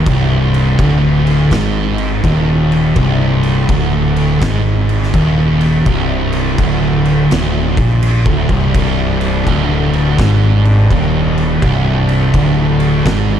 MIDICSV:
0, 0, Header, 1, 5, 480
1, 0, Start_track
1, 0, Key_signature, -3, "minor"
1, 0, Tempo, 722022
1, 47, Time_signature, 4, 2, 24, 8
1, 8906, End_track
2, 0, Start_track
2, 0, Title_t, "Tonewheel organ"
2, 0, Program_c, 0, 16
2, 5809, Note_on_c, 0, 62, 75
2, 5811, Note_on_c, 0, 48, 66
2, 5817, Note_on_c, 0, 55, 64
2, 8906, Note_off_c, 0, 48, 0
2, 8906, Note_off_c, 0, 55, 0
2, 8906, Note_off_c, 0, 62, 0
2, 8906, End_track
3, 0, Start_track
3, 0, Title_t, "Distorted electric guitar"
3, 0, Program_c, 1, 30
3, 53, Note_on_c, 1, 36, 98
3, 527, Note_off_c, 1, 36, 0
3, 539, Note_on_c, 1, 38, 103
3, 1011, Note_off_c, 1, 38, 0
3, 1019, Note_on_c, 1, 44, 92
3, 1492, Note_off_c, 1, 44, 0
3, 1498, Note_on_c, 1, 39, 94
3, 1966, Note_off_c, 1, 39, 0
3, 1968, Note_on_c, 1, 36, 113
3, 2448, Note_off_c, 1, 36, 0
3, 2460, Note_on_c, 1, 38, 99
3, 2934, Note_off_c, 1, 38, 0
3, 2941, Note_on_c, 1, 44, 105
3, 3414, Note_off_c, 1, 44, 0
3, 3417, Note_on_c, 1, 39, 98
3, 3893, Note_off_c, 1, 39, 0
3, 3901, Note_on_c, 1, 36, 107
3, 4375, Note_off_c, 1, 36, 0
3, 4387, Note_on_c, 1, 38, 100
3, 4858, Note_off_c, 1, 38, 0
3, 4867, Note_on_c, 1, 38, 100
3, 5164, Note_off_c, 1, 38, 0
3, 5184, Note_on_c, 1, 46, 112
3, 5492, Note_off_c, 1, 46, 0
3, 5500, Note_on_c, 1, 38, 104
3, 5642, Note_off_c, 1, 38, 0
3, 5652, Note_on_c, 1, 36, 97
3, 5814, Note_off_c, 1, 36, 0
3, 5822, Note_on_c, 1, 36, 104
3, 6294, Note_off_c, 1, 36, 0
3, 6301, Note_on_c, 1, 38, 93
3, 6772, Note_off_c, 1, 38, 0
3, 6775, Note_on_c, 1, 44, 108
3, 7249, Note_off_c, 1, 44, 0
3, 7257, Note_on_c, 1, 39, 94
3, 7729, Note_off_c, 1, 39, 0
3, 7738, Note_on_c, 1, 36, 104
3, 8208, Note_off_c, 1, 36, 0
3, 8211, Note_on_c, 1, 38, 103
3, 8684, Note_off_c, 1, 38, 0
3, 8693, Note_on_c, 1, 44, 103
3, 8906, Note_off_c, 1, 44, 0
3, 8906, End_track
4, 0, Start_track
4, 0, Title_t, "Fingered electric bass"
4, 0, Program_c, 2, 33
4, 46, Note_on_c, 2, 24, 82
4, 502, Note_off_c, 2, 24, 0
4, 527, Note_on_c, 2, 26, 95
4, 984, Note_off_c, 2, 26, 0
4, 1007, Note_on_c, 2, 32, 103
4, 1464, Note_off_c, 2, 32, 0
4, 1490, Note_on_c, 2, 27, 85
4, 1947, Note_off_c, 2, 27, 0
4, 1971, Note_on_c, 2, 24, 85
4, 2428, Note_off_c, 2, 24, 0
4, 2459, Note_on_c, 2, 26, 99
4, 2912, Note_off_c, 2, 26, 0
4, 2937, Note_on_c, 2, 32, 104
4, 3391, Note_off_c, 2, 32, 0
4, 3418, Note_on_c, 2, 27, 95
4, 3872, Note_off_c, 2, 27, 0
4, 3898, Note_on_c, 2, 24, 83
4, 4352, Note_off_c, 2, 24, 0
4, 4379, Note_on_c, 2, 26, 93
4, 4832, Note_off_c, 2, 26, 0
4, 4867, Note_on_c, 2, 26, 100
4, 5151, Note_off_c, 2, 26, 0
4, 5173, Note_on_c, 2, 34, 98
4, 5473, Note_off_c, 2, 34, 0
4, 5492, Note_on_c, 2, 26, 95
4, 5637, Note_off_c, 2, 26, 0
4, 5646, Note_on_c, 2, 24, 95
4, 5804, Note_off_c, 2, 24, 0
4, 5820, Note_on_c, 2, 24, 83
4, 6271, Note_off_c, 2, 24, 0
4, 6294, Note_on_c, 2, 26, 94
4, 6747, Note_off_c, 2, 26, 0
4, 6774, Note_on_c, 2, 32, 103
4, 7227, Note_off_c, 2, 32, 0
4, 7254, Note_on_c, 2, 27, 80
4, 7706, Note_off_c, 2, 27, 0
4, 7728, Note_on_c, 2, 24, 88
4, 8182, Note_off_c, 2, 24, 0
4, 8206, Note_on_c, 2, 26, 99
4, 8660, Note_off_c, 2, 26, 0
4, 8680, Note_on_c, 2, 32, 98
4, 8906, Note_off_c, 2, 32, 0
4, 8906, End_track
5, 0, Start_track
5, 0, Title_t, "Drums"
5, 41, Note_on_c, 9, 49, 79
5, 43, Note_on_c, 9, 36, 108
5, 107, Note_off_c, 9, 49, 0
5, 109, Note_off_c, 9, 36, 0
5, 360, Note_on_c, 9, 49, 59
5, 426, Note_off_c, 9, 49, 0
5, 524, Note_on_c, 9, 36, 109
5, 525, Note_on_c, 9, 49, 83
5, 591, Note_off_c, 9, 36, 0
5, 592, Note_off_c, 9, 49, 0
5, 841, Note_on_c, 9, 49, 55
5, 908, Note_off_c, 9, 49, 0
5, 1006, Note_on_c, 9, 36, 102
5, 1007, Note_on_c, 9, 49, 77
5, 1015, Note_on_c, 9, 38, 114
5, 1072, Note_off_c, 9, 36, 0
5, 1073, Note_off_c, 9, 49, 0
5, 1082, Note_off_c, 9, 38, 0
5, 1317, Note_on_c, 9, 49, 59
5, 1383, Note_off_c, 9, 49, 0
5, 1489, Note_on_c, 9, 36, 98
5, 1492, Note_on_c, 9, 49, 72
5, 1555, Note_off_c, 9, 36, 0
5, 1558, Note_off_c, 9, 49, 0
5, 1806, Note_on_c, 9, 49, 51
5, 1873, Note_off_c, 9, 49, 0
5, 1966, Note_on_c, 9, 49, 75
5, 1970, Note_on_c, 9, 36, 101
5, 2032, Note_off_c, 9, 49, 0
5, 2036, Note_off_c, 9, 36, 0
5, 2281, Note_on_c, 9, 49, 57
5, 2348, Note_off_c, 9, 49, 0
5, 2452, Note_on_c, 9, 49, 72
5, 2453, Note_on_c, 9, 36, 112
5, 2519, Note_off_c, 9, 49, 0
5, 2520, Note_off_c, 9, 36, 0
5, 2768, Note_on_c, 9, 49, 57
5, 2835, Note_off_c, 9, 49, 0
5, 2934, Note_on_c, 9, 49, 78
5, 2936, Note_on_c, 9, 36, 116
5, 2942, Note_on_c, 9, 38, 115
5, 3000, Note_off_c, 9, 49, 0
5, 3003, Note_off_c, 9, 36, 0
5, 3009, Note_off_c, 9, 38, 0
5, 3251, Note_on_c, 9, 49, 56
5, 3317, Note_off_c, 9, 49, 0
5, 3342, Note_on_c, 9, 38, 33
5, 3408, Note_off_c, 9, 38, 0
5, 3415, Note_on_c, 9, 49, 77
5, 3416, Note_on_c, 9, 36, 104
5, 3481, Note_off_c, 9, 49, 0
5, 3483, Note_off_c, 9, 36, 0
5, 3728, Note_on_c, 9, 49, 54
5, 3794, Note_off_c, 9, 49, 0
5, 3895, Note_on_c, 9, 49, 79
5, 3898, Note_on_c, 9, 36, 105
5, 3961, Note_off_c, 9, 49, 0
5, 3964, Note_off_c, 9, 36, 0
5, 4204, Note_on_c, 9, 49, 60
5, 4271, Note_off_c, 9, 49, 0
5, 4376, Note_on_c, 9, 49, 78
5, 4377, Note_on_c, 9, 36, 108
5, 4442, Note_off_c, 9, 49, 0
5, 4444, Note_off_c, 9, 36, 0
5, 4689, Note_on_c, 9, 49, 55
5, 4756, Note_off_c, 9, 49, 0
5, 4859, Note_on_c, 9, 49, 80
5, 4868, Note_on_c, 9, 38, 120
5, 4926, Note_off_c, 9, 49, 0
5, 4934, Note_off_c, 9, 38, 0
5, 5168, Note_on_c, 9, 36, 108
5, 5171, Note_on_c, 9, 49, 63
5, 5234, Note_off_c, 9, 36, 0
5, 5237, Note_off_c, 9, 49, 0
5, 5335, Note_on_c, 9, 49, 82
5, 5401, Note_off_c, 9, 49, 0
5, 5490, Note_on_c, 9, 36, 107
5, 5557, Note_off_c, 9, 36, 0
5, 5645, Note_on_c, 9, 36, 96
5, 5645, Note_on_c, 9, 49, 54
5, 5712, Note_off_c, 9, 36, 0
5, 5712, Note_off_c, 9, 49, 0
5, 5814, Note_on_c, 9, 36, 107
5, 5814, Note_on_c, 9, 49, 79
5, 5880, Note_off_c, 9, 36, 0
5, 5880, Note_off_c, 9, 49, 0
5, 6121, Note_on_c, 9, 49, 52
5, 6188, Note_off_c, 9, 49, 0
5, 6294, Note_on_c, 9, 36, 104
5, 6297, Note_on_c, 9, 49, 72
5, 6360, Note_off_c, 9, 36, 0
5, 6363, Note_off_c, 9, 49, 0
5, 6604, Note_on_c, 9, 49, 49
5, 6671, Note_off_c, 9, 49, 0
5, 6769, Note_on_c, 9, 49, 73
5, 6771, Note_on_c, 9, 36, 108
5, 6778, Note_on_c, 9, 38, 114
5, 6836, Note_off_c, 9, 49, 0
5, 6837, Note_off_c, 9, 36, 0
5, 6844, Note_off_c, 9, 38, 0
5, 7081, Note_on_c, 9, 49, 50
5, 7148, Note_off_c, 9, 49, 0
5, 7250, Note_on_c, 9, 36, 98
5, 7251, Note_on_c, 9, 49, 67
5, 7316, Note_off_c, 9, 36, 0
5, 7318, Note_off_c, 9, 49, 0
5, 7562, Note_on_c, 9, 49, 54
5, 7629, Note_off_c, 9, 49, 0
5, 7727, Note_on_c, 9, 36, 112
5, 7728, Note_on_c, 9, 49, 80
5, 7794, Note_off_c, 9, 36, 0
5, 7794, Note_off_c, 9, 49, 0
5, 8035, Note_on_c, 9, 49, 57
5, 8101, Note_off_c, 9, 49, 0
5, 8202, Note_on_c, 9, 49, 75
5, 8203, Note_on_c, 9, 36, 100
5, 8268, Note_off_c, 9, 49, 0
5, 8270, Note_off_c, 9, 36, 0
5, 8508, Note_on_c, 9, 49, 58
5, 8574, Note_off_c, 9, 49, 0
5, 8678, Note_on_c, 9, 49, 82
5, 8680, Note_on_c, 9, 36, 111
5, 8687, Note_on_c, 9, 38, 117
5, 8745, Note_off_c, 9, 49, 0
5, 8747, Note_off_c, 9, 36, 0
5, 8753, Note_off_c, 9, 38, 0
5, 8906, End_track
0, 0, End_of_file